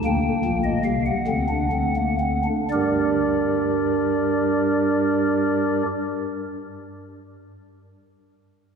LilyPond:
<<
  \new Staff \with { instrumentName = "Pipe organ" } { \time 6/8 \key g \minor \tempo 4. = 39 << { g''8. ees''16 f''16 fis''4.~ fis''16 | <g' bes' d''>2.~ | <g' bes' d''>2. | } \\ { bes4. c'16 d'16 c'16 bes16 c'16 d'16 | d'2.~ | d'2. | } >> }
  \new Staff \with { instrumentName = "Pipe organ" } { \clef bass \time 6/8 \key g \minor <d, d>8 <bes,, bes,>8 <c, c>8 <d, d>4. | <g, g>2.~ | <g, g>2. | }
>>